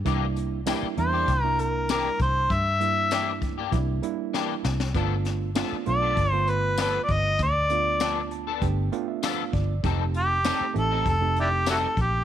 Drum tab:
HH |x-x-x-x-x-x-x-x-|x-x-x-x-x-x-----|x-x-x-x-x-x-x-x-|x-x-x-x-x-x-x-x-|
TB |----x-------x---|----x-----------|----x-------x---|----x-------x---|
SD |----o-------o---|----o-------o-oo|--o-o-------o---|----o-------o---|
BD |o-------o-----o-|o-----o-o-------|o-------o-----o-|o-------o-----o-|

HH |x-x-x-x-x-x-x-x-|
TB |----x-------x---|
SD |----o-------o---|
BD |o-------o-----o-|